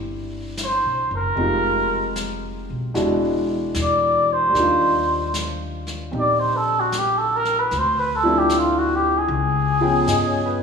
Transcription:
0.00 0.79 G1 medium
0.00 1.36 G3 soft
0.00 1.35 C4 soft
0.00 1.36 D4 soft
0.00 1.36 E4 soft
0.00 1.37 G4 medium
0.57 snare soft
0.57 hi-hat pedal medium
0.64 1.11 C5 medium
0.84 1.08 B1 medium
1.11 1.35 F#1 medium
1.16 2.14 A#4 medium
1.36 2.66 F1 medium
1.36 2.93 G#3 soft
1.36 2.95 C4 soft
1.36 2.96 D#4 soft
1.36 2.97 F4 soft
1.36 brush sweep soft
1.41 2.98 G4 medium
2.16 snare soft
2.16 hi-hat pedal medium
2.70 2.93 B1 medium
2.94 3.71 E1 medium
2.94 4.54 B2 medium
2.94 4.54 G#3 medium
2.94 4.53 D4 medium
2.94 4.55 E4 medium
2.94 4.55 F#4 medium
2.94 brush sweep soft
2.94 snare soft
3.75 4.51 E2 medium
3.75 snare soft
3.75 hi-hat pedal soft
3.82 4.34 D5 medium
4.33 5.36 C5 medium
4.49 7.68 G3 medium
4.49 7.70 A#3 soft
4.55 6.09 D#2 medium
4.55 7.71 D4 medium
4.55 6.12 D#4 soft
4.55 brush sweep soft
4.55 snare soft
4.60 7.74 F4 medium
5.34 snare soft
5.34 hi-hat pedal medium
5.87 snare soft
6.11 7.67 A#1 medium
6.11 7.70 C4 soft
6.11 7.71 D#4 soft
6.11 7.72 G4 soft
6.11 brush sweep soft
6.19 6.41 D5 medium
6.40 6.58 C5 medium
6.56 6.81 A4 medium
6.80 7.00 F#4 medium
6.92 snare soft
6.92 hi-hat pedal medium
6.99 7.19 G4 medium
7.18 7.38 A4 medium
7.36 7.61 A#4 medium
7.45 snare soft
7.59 7.79 B4 medium
7.71 9.25 D2 medium
7.71 brush sweep soft
7.71 snare soft
7.78 8.01 C5 medium
7.99 8.17 B4 medium
8.16 8.40 A4 medium
8.23 9.28 F3 medium
8.23 9.28 A3 medium
8.23 9.28 C4 soft
8.23 9.29 D4 soft
8.23 9.29 E4 medium
8.38 8.60 G4 medium
8.50 snare soft
8.50 hi-hat pedal medium
8.59 8.80 F4 medium
8.78 8.97 F#4 medium
8.96 9.19 G4 medium
9.18 10.63 G#4 medium
9.28 10.03 C#2 medium
9.28 brush sweep soft
9.81 10.63 F3 medium
9.81 10.63 B3 soft
9.81 10.63 C#4 soft
9.81 10.63 G#4 soft
9.81 10.63 G5 medium
10.07 10.63 G2 medium
10.07 10.45 D#5 soft
10.07 snare medium
10.07 hi-hat pedal medium
10.27 10.61 C#5 soft
10.46 10.63 B4 medium

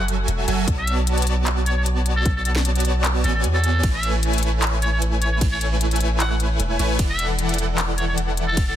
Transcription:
0.00 0.27 F#1 loud
0.00 0.46 F#3 medium
0.00 0.46 F#4 medium
0.00 0.46 A4 medium
0.00 0.46 E5 medium
0.00 0.46 G#5 medium
0.08 closed hi-hat medium
0.28 0.46 E1 loud
0.28 closed hi-hat medium
0.48 0.66 F#1 medium
0.48 0.65 F#3 loud
0.48 0.65 F#4 medium
0.48 0.65 A4 medium
0.48 0.65 E5 medium
0.48 0.65 G#5 loud
0.48 closed hi-hat medium
0.68 2.24 B1 loud
0.68 kick loud
0.68 closed hi-hat medium
0.78 0.94 E5 medium
0.87 closed hi-hat medium
1.07 closed hi-hat medium
1.18 closed hi-hat medium
1.22 closed hi-hat medium
1.27 2.23 B3 medium
1.27 2.23 F#4 medium
1.27 2.23 C#5 medium
1.27 2.23 D5 medium
1.27 2.23 A5 medium
1.27 closed hi-hat medium
1.47 clap loud
1.47 closed hi-hat medium
1.66 1.73 C#5 medium
1.66 closed hi-hat medium
1.77 1.83 C#5 medium
1.86 closed hi-hat medium
2.06 closed hi-hat medium
2.16 2.33 A4 loud
2.26 3.24 B1 loud
2.26 2.82 A5 loud
2.26 kick loud
2.26 closed hi-hat medium
2.36 2.42 A4 medium
2.45 2.52 A4 medium
2.45 closed hi-hat medium
2.56 snare medium
2.65 closed hi-hat medium
2.75 closed hi-hat soft
2.80 closed hi-hat medium
2.85 3.22 B3 medium
2.85 3.22 F#4 medium
2.85 3.22 C#5 medium
2.85 3.22 D5 medium
2.85 3.22 A5 medium
2.85 closed hi-hat medium
3.04 clap loud
3.04 closed hi-hat medium
3.24 3.46 A1 loud
3.24 3.81 B3 medium
3.24 3.81 F#4 medium
3.24 3.31 A4 medium
3.24 3.81 C#5 medium
3.24 3.81 D5 medium
3.24 3.81 G#5 loud
3.24 closed hi-hat medium
3.35 3.41 A4 medium
3.44 3.82 E2 medium
3.44 closed hi-hat medium
3.54 3.88 A4 medium
3.64 closed hi-hat medium
3.83 5.40 A1 loud
3.83 4.40 E4 medium
3.83 4.40 C#5 medium
3.83 4.40 G#5 loud
3.83 kick loud
3.83 closed hi-hat medium
3.83 ride medium
3.94 4.10 E5 medium
4.03 closed hi-hat medium
4.23 closed hi-hat medium
4.33 closed hi-hat soft
4.38 closed hi-hat medium
4.43 5.39 A3 medium
4.43 5.39 E4 medium
4.43 5.39 B4 medium
4.43 5.39 C#5 medium
4.43 5.39 G#5 medium
4.43 closed hi-hat medium
4.62 clap loud
4.62 closed hi-hat medium
4.62 ride soft
4.82 4.89 C#5 medium
4.82 closed hi-hat medium
4.93 4.98 C#5 medium
5.02 closed hi-hat medium
5.22 5.28 C#5 medium
5.22 closed hi-hat medium
5.32 5.38 C#5 medium
5.41 6.59 A1 loud
5.41 5.98 A3 medium
5.41 5.98 E4 medium
5.41 kick loud
5.41 closed hi-hat medium
5.41 ride soft
5.52 5.58 C#5 medium
5.61 5.68 C#5 medium
5.61 closed hi-hat medium
5.81 closed hi-hat medium
5.91 closed hi-hat soft
5.96 closed hi-hat medium
6.00 6.77 A3 medium
6.00 6.77 E4 medium
6.00 6.77 B4 medium
6.00 6.77 C#5 medium
6.00 6.77 G#5 medium
6.00 closed hi-hat medium
6.20 6.27 F#5 medium
6.20 clap loud
6.20 closed hi-hat medium
6.20 ride soft
6.31 6.37 F#5 medium
6.40 closed hi-hat medium
6.60 6.78 E1 loud
6.60 closed hi-hat medium
6.79 6.98 A1 medium
6.79 6.97 A3 loud
6.79 6.97 E4 medium
6.79 6.97 B4 medium
6.79 6.97 C#5 medium
6.79 6.97 G#5 loud
6.79 closed hi-hat medium
6.99 8.56 E1 loud
6.99 7.56 E3 medium
6.99 7.56 E4 medium
6.99 7.56 A4 medium
6.99 7.56 D5 medium
6.99 7.56 F#5 loud
6.99 kick loud
6.99 closed hi-hat medium
6.99 ride medium
7.10 7.26 E5 medium
7.19 closed hi-hat medium
7.39 closed hi-hat medium
7.49 closed hi-hat soft
7.54 closed hi-hat medium
7.58 8.55 E3 medium
7.58 8.55 E4 medium
7.58 8.55 A4 medium
7.58 8.55 D5 medium
7.58 8.55 F#5 medium
7.58 closed hi-hat medium
7.78 clap loud
7.78 closed hi-hat medium
7.78 ride soft
7.98 8.05 C#5 medium
7.98 closed hi-hat medium
8.08 8.14 C#5 medium
8.18 closed hi-hat medium
8.37 closed hi-hat medium
8.48 8.64 A4 medium
8.57 8.76 E1 loud
8.57 kick loud
8.57 closed hi-hat medium
8.57 ride medium
8.68 8.73 A4 medium

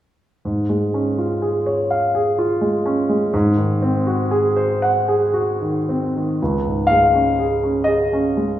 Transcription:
0.45 3.30 G#2 soft
0.69 1.08 G#3 soft
0.94 1.32 C#4 soft
1.18 1.57 F4 soft
1.42 1.81 G#4 soft
1.66 2.04 C#5 soft
1.91 2.28 F5 soft
2.15 2.52 G#4 soft
2.39 2.76 F4 soft
2.61 3.00 G#3 soft
2.86 3.24 C#4 soft
3.09 3.34 G#3 soft
3.34 6.36 G#2 medium
3.57 3.97 D#3 soft
3.82 4.22 C4 soft
4.07 4.46 F#4 soft
4.31 4.71 G#4 medium
4.57 4.97 C5 soft
4.82 5.23 F#5 medium
5.08 5.50 G#4 medium
5.34 5.76 F#4 soft
5.61 6.04 D#3 soft
5.89 6.30 C4 soft
6.16 6.41 D#3 soft
6.42 8.60 C#2 soft
6.66 7.05 G#2 soft
6.87 7.30 G#3 soft
6.87 7.87 F5 medium
7.14 7.54 C#4 soft
7.39 7.78 G#4 soft
7.63 8.03 C#4 soft
7.84 8.27 G#4 soft
7.84 8.60 D#5 medium
8.13 8.53 C#4 soft
8.37 8.60 G#3 soft

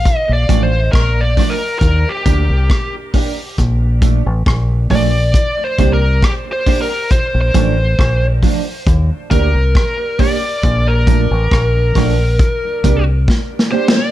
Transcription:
0.00 0.18 F5 loud
0.05 kick loud
0.05 hi-hat pedal medium
0.18 0.33 D#5 loud
0.29 0.49 A#1 medium
0.33 0.61 D5 loud
0.49 0.91 A1 medium
0.49 0.66 F3 medium
0.49 0.67 A3 medium
0.49 0.67 D4 loud
0.49 kick loud
0.49 closed hi-hat medium
0.63 0.92 C5 medium
0.92 1.35 A#1 medium
0.92 1.23 A#4 medium
0.92 kick loud
0.92 cross-stick loud
1.21 1.52 D5 medium
1.37 1.54 F3 medium
1.37 1.55 A3 medium
1.37 1.55 D4 medium
1.37 kick medium
1.37 cross-stick medium
1.37 open hi-hat medium
1.50 1.78 A#4 medium
1.79 2.04 D#2 loud
1.79 2.11 A#4 medium
1.79 kick loud
1.79 hi-hat pedal medium
2.09 2.95 G4 medium
2.26 2.48 D2 medium
2.26 2.43 A#3 medium
2.26 2.43 D4 medium
2.26 2.43 G4 medium
2.26 kick loud
2.26 closed hi-hat medium
2.50 2.69 C2 medium
2.70 kick loud
2.70 cross-stick loud
3.14 3.31 A#3 medium
3.14 3.31 D4 medium
3.14 3.32 G4 medium
3.14 kick medium
3.14 open hi-hat medium
3.37 muted clean electric guitar stroke soft
3.58 4.22 A#1 loud
3.58 kick loud
3.58 hi-hat pedal medium
4.02 4.19 F3 medium
4.02 4.19 A3 medium
4.02 4.20 D4 medium
4.02 kick loud
4.02 closed hi-hat medium
4.26 4.46 A1 medium
4.46 4.88 A#1 medium
4.46 kick loud
4.46 cross-stick loud
4.90 5.32 A#1 medium
4.90 5.07 F3 medium
4.90 5.08 A3 medium
4.90 5.08 D4 medium
4.90 5.66 D5 loud
4.90 kick medium
4.90 open hi-hat medium
5.34 kick loud
5.34 hi-hat pedal medium
5.64 5.93 C5 loud
5.79 6.21 C2 loud
5.79 5.95 A#3 medium
5.79 5.96 D4 medium
5.79 5.96 G4 loud
5.79 kick loud
5.79 closed hi-hat medium
5.93 6.24 A#4 medium
6.22 6.32 G4 medium
6.22 kick loud
6.22 cross-stick loud
6.53 6.81 C5 medium
6.66 6.83 A#3 medium
6.66 6.84 D4 loud
6.66 6.84 G4 loud
6.66 kick medium
6.66 open hi-hat medium
6.82 7.11 A#4 medium
6.90 muted clean electric guitar stroke medium
7.11 7.40 C5 loud
7.11 kick loud
7.11 hi-hat pedal medium
7.35 7.54 A#1 medium
7.41 8.25 C5 medium
7.54 7.97 A1 medium
7.54 7.71 F3 medium
7.54 7.72 A3 loud
7.54 7.72 D4 loud
7.54 kick loud
7.54 closed hi-hat medium
7.99 8.41 A#1 medium
7.99 kick loud
7.99 cross-stick loud
8.43 8.60 F3 medium
8.43 8.60 A3 medium
8.43 8.61 D4 loud
8.43 kick medium
8.43 open hi-hat medium
8.87 9.09 D#2 loud
8.87 kick loud
8.87 hi-hat pedal medium
9.31 9.53 D2 medium
9.31 9.48 A#3 medium
9.31 9.48 D4 medium
9.31 9.49 G4 medium
9.31 10.22 A#4 loud
9.31 kick loud
9.31 closed hi-hat medium
9.55 9.75 C2 medium
9.75 kick loud
9.75 cross-stick loud
10.19 10.36 A#3 loud
10.19 10.36 D4 medium
10.19 10.37 G4 loud
10.19 10.89 D5 loud
10.19 kick loud
10.19 open hi-hat medium
10.42 muted clean electric guitar stroke medium
10.63 11.27 A#1 loud
10.63 kick loud
10.63 hi-hat pedal medium
10.88 13.04 A#4 medium
11.07 11.24 F3 loud
11.07 11.25 A3 medium
11.07 11.25 D4 loud
11.07 kick loud
11.07 closed hi-hat medium
11.31 11.51 A1 medium
11.51 11.93 A#1 loud
11.51 kick loud
11.51 cross-stick loud
11.95 12.37 A#1 loud
11.95 12.13 F3 medium
11.95 12.13 A3 medium
11.95 12.13 D4 medium
11.95 kick loud
11.95 cross-stick medium
11.95 open hi-hat medium
12.39 kick loud
12.39 hi-hat pedal medium
12.84 13.26 C2 loud
12.84 13.01 A#3 medium
12.84 13.01 D4 medium
12.84 13.01 G4 medium
12.84 kick loud
12.84 closed hi-hat medium
13.28 kick loud
13.28 snare medium
13.59 snare medium
13.72 13.89 A#3 medium
13.72 13.89 D4 medium
13.72 13.90 G4 loud
13.72 13.94 C5 loud
13.88 snare loud
13.95 14.11 D5 loud
13.95 muted clean electric guitar stroke medium

